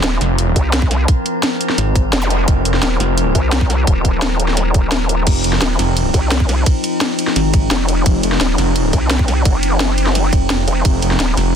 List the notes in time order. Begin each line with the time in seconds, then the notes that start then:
Already playing: F3 C4 A#4
0.04 D#1, snare, closed hi-hat
0.21 F1, snare, closed hi-hat
0.38 closed hi-hat
0.56 C2, kick, closed hi-hat
0.73 snare, closed hi-hat
0.82 kick
0.91 snare, closed hi-hat
1.08 kick, closed hi-hat
1.26 closed hi-hat
1.43 snare, closed hi-hat
1.61 closed hi-hat
1.69 snare
1.78 G#1, snare, closed hi-hat
1.96 kick, closed hi-hat
2.13 F1, snare, closed hi-hat
2.22 zap
2.30 closed hi-hat
2.48 F1, kick, closed hi-hat
2.65 F1, closed hi-hat
2.74 snare
2.83 D#1, snare, closed hi-hat
3.00 F1, snare, closed hi-hat
3.18 closed hi-hat
3.35 C2, kick, closed hi-hat
3.52 snare, closed hi-hat
3.61 kick
3.70 snare, closed hi-hat
3.87 D#1, kick, closed hi-hat
4.05 kick, closed hi-hat
4.22 snare, closed hi-hat
4.40 closed hi-hat
4.48 snare
4.57 snare, closed hi-hat
4.74 kick, closed hi-hat
4.92 snare, closed hi-hat
5.09 closed hi-hat
5.27 F1 D#4, kick, closed hi-hat, crash, ride
5.44 F1, closed hi-hat, ride
5.53 snare
5.62 D#1, snare, closed hi-hat, ride
5.79 F1, snare, closed hi-hat, ride
5.97 closed hi-hat, ride
6.14 C2, kick, closed hi-hat, ride
6.32 snare, closed hi-hat, ride
6.40 kick
6.49 snare, closed hi-hat, ride
6.66 kick, closed hi-hat, ride
6.84 closed hi-hat, ride
7.01 snare, closed hi-hat, ride
7.19 closed hi-hat, ride
7.27 snare
7.36 G#1, snare, closed hi-hat, ride
7.54 kick, closed hi-hat, ride
7.71 F1, snare, closed hi-hat, ride
7.89 closed hi-hat, ride
8.06 F1, kick, closed hi-hat, ride
8.23 F1, closed hi-hat, ride
8.32 snare
8.41 D#1, snare, closed hi-hat, ride
8.58 F1, snare, closed hi-hat, ride
8.76 closed hi-hat, ride
8.93 C2, kick, closed hi-hat, ride
9.11 snare, closed hi-hat, ride
9.19 kick
9.28 snare, closed hi-hat, ride
9.45 F#1, kick, closed hi-hat, ride
9.63 closed hi-hat, ride
9.80 snare, closed hi-hat, ride
9.98 closed hi-hat, ride
10.07 snare
10.15 snare, closed hi-hat, ride
10.33 F1, kick, closed hi-hat, ride
10.50 snare, closed hi-hat, ride
10.68 F1, closed hi-hat, ride
10.85 F1 F4, kick, closed hi-hat, ride
11.02 F1, closed hi-hat, ride
11.11 snare
11.20 D#1, snare, closed hi-hat, ride
11.37 F1, snare, closed hi-hat, ride